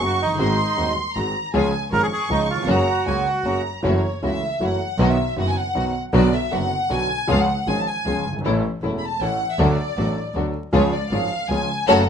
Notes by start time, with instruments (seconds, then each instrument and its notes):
Already playing: violin section C#6
0.00 double bass F#1, grand piano F#2 C#3 F#3 A#3 F#4, string section A#3 C#4 F#4
0.06 bandoneon F#4
0.20 double bass F#1, bandoneon D#4
0.26 grand piano F1
0.30 grand piano F#1
0.35 grand piano G1 G#1 D#3 G#3 C4 F#4, string section G#3 C4 F#4, violin section C6
0.39 double bass G#1, grand piano G#2
0.76 grand piano D#1 D#2 D#3 G#3 C4 F#4, double bass D#2, string section G#3 C4 F#4
1.15 grand piano G#1 G#2 D#3 G#3 C4 F#4, double bass G#1, string section G#3 C4 F#4, violin section A#5
1.54 grand piano C#2 C#3 F3 G#3 C#4 G#4, double bass C#2, string section G#3 C#4 F4, violin section G#5
1.91 double bass G#1, grand piano G#1 G#2 F3 G#3 C#4 G#4, string section G#3 C#4 F4, bandoneon A#4, violin section C#6
2.03 bandoneon G#4
2.13 bandoneon G#4
2.30 double bass C#2, grand piano C#2 C#3 F3 G#3 C#4 G#4, string section G#3 C#4 F4, bandoneon D#4
2.50 grand piano D#2, bandoneon F4
2.58 grand piano E2
2.63 grand piano F2
2.68 double bass F#1, grand piano F#2 F#3 A#3 C#4 G#4, string section G#3 A#3 F#4, bandoneon F#4, violin section A#5
3.06 double bass C#2, grand piano C#2 C#3 F#3 A#3 C#4 G#4, string section G#3 A#3 F#4, violin section G#5
3.27 violin section F#5
3.44 double bass F#1, grand piano F#2 F#3 A#3 C#4 G#4, string section G#3 A#3 F#4, violin section A#5
3.83 double bass F#1, grand piano F#2 E3 F#3 A3 C#4 F#4, string section A3 E4 F#4, violin section C#5
4.22 grand piano C#2 C#3 E3 A3 C#4 F#4, double bass C#2, string section A3 E4 F#4
4.27 violin section E5
4.60 double bass F#1, grand piano F#2 E3 F#3 A3 C#4 F#4, string section A3 E4 F#4, violin section F#5
4.98 double bass B1, grand piano B1 B2 D#3 F#3 B3 F#4, string section B3 D#4 F#4, violin section D#5
5.10 violin section E5
5.36 grand piano F#1 F#2 D#3 F#3 B3 F#4, double bass F#1, string section B3 D#4 F#4, violin section F#5
5.48 violin section G#5
5.57 violin section F#5
5.75 grand piano B1 B2 D#3 F#3 B3 F#4, double bass B1, string section B3 D#4 F#4
6.13 grand piano B1 B2 D3 F#3 B3 F#4, double bass B1, string section B3 D4 F#4, violin section D5
6.35 violin section E5
6.51 grand piano F#1 F#2 D3 F#3 B3 F#4, double bass F#1, string section B3 D4 F#4, violin section F#5
6.90 grand piano B1 B2 D3 F#3 B3 F#4, double bass B1, string section B3 D4 F#4, violin section G#5
7.27 grand piano C#2 C#3 F3 G#3 C#4 G#4, double bass C#2, string section G#3 C#4 F4, violin section F5
7.40 violin section F#5
7.67 double bass G#1, grand piano G#1 G#2 F3 G#3 C#4 G#4, string section G#3 C#4 F4, violin section G#5
7.79 violin section A5
7.88 violin section G#5
8.04 double bass C#2, grand piano C#2 C#3 F3 G#3 C#4 G#4, string section G#3 C#4 F4
8.25 double bass G1
8.32 grand piano F#1
8.36 grand piano G1
8.41 grand piano G#1, double bass A1, string section A3 C#4 E4
8.46 grand piano A1 A2 E3 A3 C#4 A4
8.82 double bass E1, grand piano E1 E2 E3 A3 C#4 A4, string section A3 C#4 E4
8.98 violin section B5
9.04 violin section A5
9.20 double bass A1, grand piano A1 A2 E3 A3 C#4 A4, string section A3 C#4 E4, violin section F#5
9.51 violin section E5
9.58 double bass D2, grand piano D2 D3 F#3 A3 D4 A4, string section A3 D4 F#4, violin section D5
9.96 double bass A1, grand piano A1 A2 F#3 A3 D4 A4, string section A3 D4 F#4
10.34 double bass D2, grand piano D2 D3 F#3 A3 D4 A4, string section A3 D4 F#4
10.73 double bass C#2, grand piano C#2 C#3 F3 G#3 C#4 G#4, string section G#3 C#4 F4, violin section C#5
10.92 violin section D5
11.11 double bass G#1, grand piano G#1 G#2 F3 G#3 C#4 G#4, string section G#3 C#4 F4, violin section F5
11.47 double bass C#2, grand piano C#2 C#3 F3 G#3 C#4 G#4, string section G#3 C#4 F4, violin section G#5
11.87 double bass F#1, grand piano C#3 F#3 A3, string section A3 C#4 F#4, violin section A4 C#5 F#5